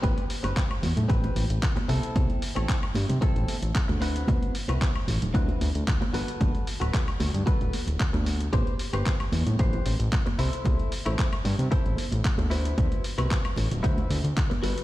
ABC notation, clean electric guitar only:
X:1
M:4/4
L:1/16
Q:1/4=113
K:Ador
V:1 name="Clean electric guitar"
[CGB]2 z [CGB] z4 [CGB]2 z4 [CEA]2- | [CEA]2 z [CEA] z4 [CEA]2 z4 [CEFB]2- | [CEFB]2 z [CEFB] z4 [CEFB]2 z4 [FAB]2- | [FAB]2 z [FAB] z4 [FAB]2 z6 |
[GBc]2 z [GBc] z4 [GBc]2 z4 [EAc]2- | [EAc]2 z [EAc] z4 [EAc]2 z4 [EFBc]2- | [EFBc]2 z [EFBc] z4 [EFBc]2 z4 [FAB]2 |]